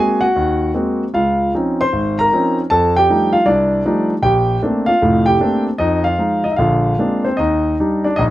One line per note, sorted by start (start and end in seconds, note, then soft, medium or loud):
0.00 0.24 G#3 soft
0.00 0.24 A#3 soft
0.00 0.24 C4 soft
0.00 0.21 F#4 soft
0.00 0.22 G#4 medium
0.00 0.23 G#5 medium
0.21 0.71 F#4 medium
0.21 0.70 F#5 medium
0.36 0.70 D#2 medium
0.75 1.03 G#3 soft
0.75 1.03 A#3 soft
0.75 1.02 C4 soft
0.75 1.03 F#4 medium
1.14 1.49 C#2 medium
1.14 1.51 F4 medium
1.14 1.51 F5 medium
1.54 1.82 F3 soft
1.54 1.82 C4 soft
1.54 1.82 C#4 soft
1.54 1.82 D#4 soft
1.81 2.17 C5 medium
1.81 2.17 C6 medium
1.93 2.27 G#1 medium
2.19 2.56 A#4 medium
2.19 2.55 A#5 medium
2.33 2.60 F3 soft
2.33 2.60 C4 soft
2.33 2.60 C#4 soft
2.33 2.60 D#4 soft
2.70 3.04 F2 medium
2.70 2.95 A4 medium
2.70 2.97 A5 medium
2.97 3.33 G4 medium
2.97 3.32 G5 medium
3.10 3.36 F3 soft
3.10 3.36 G3 soft
3.10 3.36 A3 soft
3.10 3.36 D4 soft
3.10 3.36 D#4 soft
3.33 3.46 F4 medium
3.33 3.45 F5 medium
3.46 3.80 C2 medium
3.46 3.85 D4 medium
3.46 4.06 D5 medium
3.85 4.12 F3 medium
3.85 4.12 G3 soft
3.85 4.12 A3 soft
3.85 4.13 D4 soft
3.85 4.13 D#4 medium
4.22 4.57 A#1 medium
4.22 4.60 G4 medium
4.22 4.59 G5 medium
4.62 4.89 A3 medium
4.62 4.90 A#3 soft
4.62 4.90 C4 soft
4.62 4.90 D4 medium
4.86 5.24 F4 medium
4.86 5.23 F5 medium
5.02 5.35 F1 medium
5.02 5.35 A2 medium
5.26 5.63 G4 medium
5.26 5.62 G5 medium
5.40 5.67 A3 soft
5.40 5.67 A#3 soft
5.40 5.68 C4 soft
5.40 5.67 D4 medium
5.78 6.13 F2 medium
5.78 6.03 D#4 medium
5.78 6.03 D#5 medium
6.04 6.42 F4 medium
6.04 6.45 F5 medium
6.19 6.46 F3 soft
6.19 6.46 G#3 soft
6.19 6.45 D#4 soft
6.44 6.53 D#4 soft
6.44 6.53 D#5 medium
6.52 6.57 E5 soft
6.56 6.93 A#1 medium
6.56 6.93 D3 medium
6.56 7.21 F4 medium
6.56 7.20 F5 medium
6.99 7.27 G#3 soft
6.99 7.27 A#3 soft
6.99 7.25 C4 soft
6.99 7.27 D4 soft
7.25 7.38 C4 soft
7.25 7.39 C5 medium
7.37 7.73 D#2 medium
7.37 7.75 D#4 medium
7.37 7.74 D#5 medium
7.80 8.06 G3 soft
7.80 8.05 D4 soft
7.80 8.06 D#4 medium
8.04 8.17 D4 medium
8.04 8.18 D5 medium
8.16 8.30 A#1 medium
8.16 8.25 D#4 medium
8.16 8.22 D#5 medium